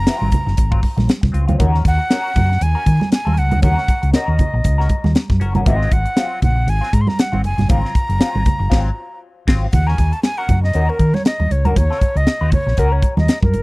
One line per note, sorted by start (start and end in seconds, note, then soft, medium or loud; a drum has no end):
0.00 1.09 A#5 loud
0.07 0.30 F#3 medium
0.07 0.31 C4 medium
0.07 0.31 F4 medium
0.07 snare loud
0.07 closed hi-hat medium
0.21 0.31 G#1 medium
0.21 high conga medium
0.32 muted clean electric guitar stroke soft
0.32 kick medium
0.32 closed hi-hat medium
0.32 low conga medium
0.46 0.56 F#1 medium
0.46 muted clean electric guitar stroke soft
0.46 snare soft
0.57 0.80 G#1 medium
0.57 muted clean electric guitar stroke soft
0.57 kick medium
0.57 closed hi-hat loud
0.71 0.82 F#3 medium
0.71 0.82 C4 medium
0.71 0.83 F4 medium
0.71 kick medium
0.83 muted clean electric guitar stroke soft
0.83 kick medium
0.83 open hi-hat medium
0.83 muted conga soft
0.97 1.07 A#1 medium
0.97 muted clean electric guitar stroke medium
0.97 snare soft
0.97 high conga medium
1.08 muted clean electric guitar stroke soft
1.08 snare loud
1.08 closed hi-hat medium
1.21 1.33 C2 medium
1.21 muted clean electric guitar stroke soft
1.21 kick loud
1.21 snare soft
1.21 high conga medium
1.32 1.46 C#2 medium
1.32 1.48 F#3 medium
1.32 1.48 C4 medium
1.32 1.46 F4 medium
1.32 closed hi-hat medium
1.32 muted conga soft
1.48 1.58 D2 medium
1.48 1.63 F#3 medium
1.48 1.58 C4 medium
1.48 1.59 F4 medium
1.48 closed hi-hat medium
1.48 high conga medium
1.48 low conga medium
1.58 1.81 D#2 loud
1.58 1.83 C#4 medium
1.58 1.83 F#4 medium
1.58 1.83 A#4 medium
1.58 kick loud
1.58 closed hi-hat medium
1.58 muted conga soft
1.58 low conga medium
1.75 snare soft
1.85 1.97 D#2 medium
1.85 2.64 F#5 loud
1.85 kick loud
1.85 closed hi-hat medium
1.98 muted clean electric guitar stroke medium
2.10 2.34 C#4 medium
2.10 2.34 F#4 medium
2.10 2.35 A#4 medium
2.10 snare loud
2.10 closed hi-hat medium
2.10 muted conga soft
2.35 2.58 F#2 loud
2.35 muted clean electric guitar stroke soft
2.35 kick loud
2.35 closed hi-hat medium
2.35 muted conga soft
2.35 low conga medium
2.50 muted clean electric guitar stroke soft
2.50 snare soft
2.61 2.73 D#2 loud
2.61 3.13 G#5 loud
2.61 muted clean electric guitar stroke soft
2.61 closed hi-hat loud
2.61 muted conga soft
2.75 2.85 C#4 medium
2.75 2.86 F#4 medium
2.75 2.86 A#4 medium
2.86 2.99 D#3 medium
2.86 muted clean electric guitar stroke soft
2.86 kick medium
2.86 closed hi-hat medium
2.86 muted conga soft
3.00 muted clean electric guitar stroke soft
3.00 snare soft
3.00 high conga medium
3.11 3.40 G#5 medium
3.11 muted clean electric guitar stroke soft
3.11 snare loud
3.11 closed hi-hat medium
3.11 muted conga soft
3.25 3.36 D#2 medium
3.25 3.36 C#4 medium
3.25 3.36 F#4 medium
3.25 3.37 A#4 medium
3.25 high conga medium
3.37 3.52 C#2 medium
3.37 3.63 F#5 loud
3.37 closed hi-hat medium
3.51 3.62 D2 loud
3.51 muted clean electric guitar stroke soft
3.51 closed hi-hat medium
3.51 high conga medium
3.51 low conga medium
3.62 3.75 D#2 loud
3.62 3.86 C#4 medium
3.62 3.87 F#4 medium
3.62 3.87 A#4 medium
3.62 4.10 F#5 loud
3.62 kick loud
3.62 closed hi-hat medium
3.62 low conga medium
3.78 snare soft
3.88 kick medium
3.88 closed hi-hat medium
3.88 muted conga soft
4.02 4.12 C#2 medium
4.02 muted clean electric guitar stroke soft
4.02 closed hi-hat medium
4.13 4.37 C#4 medium
4.13 4.38 F#4 medium
4.13 4.38 A#4 loud
4.13 5.11 D#5 medium
4.13 snare loud
4.13 closed hi-hat medium
4.28 4.38 D#2 medium
4.39 muted clean electric guitar stroke soft
4.39 kick medium
4.39 closed hi-hat medium
4.39 muted conga soft
4.39 low conga medium
4.54 4.63 A#1 medium
4.54 muted clean electric guitar stroke medium
4.64 4.87 C#2 loud
4.64 muted clean electric guitar stroke soft
4.64 kick medium
4.64 closed hi-hat loud
4.64 muted conga soft
4.78 4.89 C#4 medium
4.78 4.89 F#4 medium
4.78 4.90 A#4 medium
4.78 snare soft
4.89 muted clean electric guitar stroke soft
4.89 kick medium
4.89 closed hi-hat medium
4.89 muted conga soft
5.04 5.14 D#2 medium
5.04 muted clean electric guitar stroke soft
5.04 snare soft
5.04 high conga medium
5.15 muted clean electric guitar stroke soft
5.15 snare loud
5.15 closed hi-hat medium
5.30 5.39 F#2 medium
5.30 muted clean electric guitar stroke soft
5.30 kick medium
5.30 snare soft
5.30 high conga medium
5.40 5.54 F#1 medium
5.40 5.56 C#4 medium
5.40 5.55 F#4 medium
5.40 5.54 A#4 medium
5.40 closed hi-hat medium
5.40 muted conga soft
5.54 5.64 G1 medium
5.54 5.66 C#4 medium
5.54 5.67 F#4 medium
5.54 5.69 A#4 medium
5.54 closed hi-hat soft
5.54 high conga medium
5.54 low conga medium
5.66 5.88 G#1 loud
5.66 5.90 F#3 medium
5.66 5.90 C4 medium
5.66 5.90 F4 medium
5.66 5.94 D#5 medium
5.66 kick loud
5.66 closed hi-hat loud
5.66 muted conga soft
5.66 low conga medium
5.82 snare soft
5.91 6.04 G#1 loud
5.91 6.43 F#5 loud
5.91 kick medium
5.91 closed hi-hat medium
5.91 muted conga soft
6.05 muted clean electric guitar stroke soft
6.05 closed hi-hat medium
6.16 6.40 F#3 medium
6.16 6.41 C4 medium
6.16 6.41 F4 loud
6.16 snare loud
6.16 closed hi-hat loud
6.16 muted conga soft
6.42 6.64 A#1 medium
6.42 6.71 F#5 loud
6.42 muted clean electric guitar stroke soft
6.42 kick medium
6.42 closed hi-hat medium
6.42 low conga medium
6.56 muted clean electric guitar stroke medium
6.67 6.80 G#1 loud
6.67 6.95 G#5 loud
6.67 muted clean electric guitar stroke soft
6.67 closed hi-hat medium
6.81 6.91 F#3 medium
6.81 6.92 C4 medium
6.81 6.92 F4 medium
6.81 snare soft
6.92 7.05 G#2 medium
6.92 7.03 A#5 loud
6.92 muted clean electric guitar stroke soft
6.92 kick medium
6.92 closed hi-hat medium
7.01 7.10 C6 medium
7.07 7.21 A#5 loud
7.07 muted clean electric guitar stroke soft
7.07 snare soft
7.07 high conga medium
7.18 7.44 F#5 loud
7.18 muted clean electric guitar stroke soft
7.18 snare loud
7.18 closed hi-hat loud
7.32 7.44 G#1 medium
7.32 7.42 F#3 medium
7.32 7.43 C4 medium
7.32 7.44 F4 medium
7.32 high conga medium
7.44 7.56 F#1 loud
7.44 7.68 G#5 loud
7.44 closed hi-hat medium
7.44 muted conga soft
7.57 7.68 G1 medium
7.57 muted clean electric guitar stroke medium
7.57 snare soft
7.57 closed hi-hat soft
7.57 high conga medium
7.57 low conga medium
7.68 7.82 G#1 loud
7.68 7.93 F#3 medium
7.68 7.93 C4 medium
7.68 7.94 F4 loud
7.68 9.19 A#5 loud
7.68 kick loud
7.68 closed hi-hat medium
7.68 low conga medium
7.85 snare soft
7.95 kick medium
7.95 closed hi-hat medium
8.09 8.19 F#1 medium
8.09 muted clean electric guitar stroke soft
8.09 closed hi-hat soft
8.20 8.44 F#3 medium
8.20 8.44 C4 medium
8.20 8.45 F4 medium
8.20 snare loud
8.20 closed hi-hat medium
8.35 8.45 G#1 medium
8.35 high conga medium
8.45 muted clean electric guitar stroke soft
8.45 kick loud
8.45 closed hi-hat medium
8.45 low conga medium
8.59 8.70 F#1 medium
8.59 muted clean electric guitar stroke medium
8.70 8.89 G#1 loud
8.70 8.89 F#3 loud
8.70 8.89 C4 loud
8.70 8.88 F4 loud
8.70 kick loud
8.70 snare loud
8.70 crash medium
9.47 9.65 G#1 loud
9.47 9.65 F#3 medium
9.47 9.66 C4 medium
9.47 9.66 F4 medium
9.47 kick loud
9.47 snare loud
9.47 crash medium
9.72 9.95 D#2 loud
9.72 9.89 F#5 loud
9.72 muted clean electric guitar stroke soft
9.72 kick loud
9.72 closed hi-hat medium
9.72 low conga medium
9.87 9.98 C#4 medium
9.87 9.98 F#4 medium
9.87 9.99 A#4 medium
9.87 10.14 G#5 medium
9.87 snare soft
9.98 10.10 D#2 loud
9.98 muted clean electric guitar stroke soft
9.98 kick medium
9.98 closed hi-hat medium
9.98 muted conga soft
10.12 10.23 A5 medium
10.12 muted clean electric guitar stroke soft
10.12 closed hi-hat soft
10.23 10.39 G#5 loud
10.23 muted clean electric guitar stroke soft
10.23 snare loud
10.23 closed hi-hat medium
10.23 muted conga soft
10.38 10.48 C#4 medium
10.38 10.49 F#4 medium
10.38 10.49 A#4 medium
10.38 10.63 F#5 medium
10.49 10.71 F#2 loud
10.49 muted clean electric guitar stroke soft
10.49 kick medium
10.49 closed hi-hat medium
10.49 muted conga soft
10.49 low conga medium
10.63 10.91 D#5 medium
10.63 muted clean electric guitar stroke soft
10.63 snare soft
10.73 10.87 D#2 loud
10.73 10.98 C#4 medium
10.73 10.98 F#4 medium
10.73 10.99 A#4 medium
10.73 closed hi-hat medium
10.90 11.16 A#4 medium
10.99 11.12 D#3 medium
10.99 muted clean electric guitar stroke soft
10.99 kick medium
10.99 closed hi-hat medium
11.14 11.26 C#5 loud
11.14 muted clean electric guitar stroke soft
11.14 snare soft
11.14 high conga medium
11.25 11.53 D#5 medium
11.25 muted clean electric guitar stroke soft
11.25 snare loud
11.25 closed hi-hat loud
11.25 muted conga soft
11.40 11.49 D#2 medium
11.40 muted clean electric guitar stroke soft
11.40 high conga medium
11.51 11.65 C#2 medium
11.51 11.68 C#5 medium
11.51 closed hi-hat medium
11.51 muted conga soft
11.65 11.75 D2 medium
11.65 11.76 C#4 medium
11.65 11.76 F#4 medium
11.65 11.77 A#4 medium
11.65 11.79 A#4 medium
11.65 closed hi-hat soft
11.65 high conga medium
11.65 low conga medium
11.76 11.89 D#2 medium
11.76 12.18 C#5 loud
11.76 muted clean electric guitar stroke soft
11.76 kick loud
11.76 closed hi-hat medium
11.76 muted conga soft
11.76 low conga medium
11.90 12.00 C#4 medium
11.90 12.01 F#4 medium
11.90 12.02 A#4 medium
11.90 snare soft
12.01 muted clean electric guitar stroke soft
12.01 kick loud
12.01 closed hi-hat medium
12.01 muted conga soft
12.16 12.25 C#2 medium
12.16 12.53 D#5 medium
12.16 muted clean electric guitar stroke soft
12.16 closed hi-hat medium
12.27 muted clean electric guitar stroke soft
12.27 snare loud
12.27 closed hi-hat medium
12.41 12.51 D#2 medium
12.41 12.52 C#4 medium
12.41 12.52 F#4 medium
12.41 12.54 C5 medium
12.52 12.81 C#5 loud
12.52 muted clean electric guitar stroke soft
12.52 kick medium
12.52 closed hi-hat medium
12.52 muted conga soft
12.52 low conga medium
12.67 12.76 A#1 medium
12.67 muted clean electric guitar stroke soft
12.67 snare soft
12.77 13.00 C#2 medium
12.77 13.01 C#4 medium
12.77 13.02 F#4 medium
12.77 12.94 A#4 medium
12.77 13.02 A#4 loud
12.77 kick medium
12.77 closed hi-hat medium
12.92 13.18 C#5 medium
13.02 muted clean electric guitar stroke soft
13.02 kick medium
13.02 closed hi-hat medium
13.02 muted conga soft
13.17 13.27 D#2 loud
13.17 13.42 D#5 medium
13.17 muted clean electric guitar stroke medium
13.17 snare soft
13.17 high conga medium
13.28 muted clean electric guitar stroke soft
13.28 snare loud
13.28 closed hi-hat loud
13.28 muted conga soft
13.43 13.52 F#2 medium
13.43 13.62 A#4 medium
13.43 muted clean electric guitar stroke soft
13.43 kick medium
13.43 high conga medium
13.54 13.62 F#1 medium
13.54 closed hi-hat medium
13.54 muted conga soft